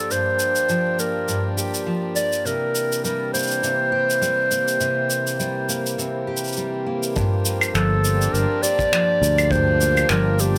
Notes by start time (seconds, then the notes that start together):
Already playing: F3 A#3 D4 G4 A4
0.11 G2 C5, shaker
0.40 shaker
0.56 shaker
0.69 F3, shaker
0.98 A#3 A#4, shaker
1.28 G2, shaker
1.57 G4, shaker
1.74 shaker
1.86 F3
2.16 A#3 D5, shaker
2.33 shaker
2.45 C3 E3 A#4, shaker
2.75 shaker
2.92 shaker
3.04 G3 A#4, shaker
3.33 A#3 C5, shaker
3.39 shaker
3.43 shaker
3.47 shaker
3.51 shaker
3.63 C3, shaker
3.72 C4
3.92 G4
4.10 shaker
4.21 G3, shaker
4.51 A#3, shaker
4.68 shaker
4.80 C3, shaker
5.10 shaker
5.27 shaker
5.40 G3, shaker
5.69 A#3, shaker
5.86 shaker
5.98 C3, shaker
6.27 G4
6.37 shaker
6.44 shaker
6.47 shaker
6.53 shaker
6.57 G3, shaker
6.87 A#3
7.03 shaker
7.15 G2 F3, kick, shaker
7.45 A#3, shaker
7.61 claves, shaker
7.75 G1 F3 A4, finger snap, shaker
8.04 D4, shaker
8.16 D4
8.22 shaker
8.34 G1 G2 A#4, shaker
8.63 G4 D5, shaker
8.79 kick, shaker
8.93 F3, finger snap, shaker
9.22 D2, shaker
9.38 claves, shaker
9.51 G2 C5, kick, shaker
9.81 A#3, shaker
9.97 claves, shaker
10.09 G1 F3 A#4, finger snap, shaker
10.39 D4 G4, shaker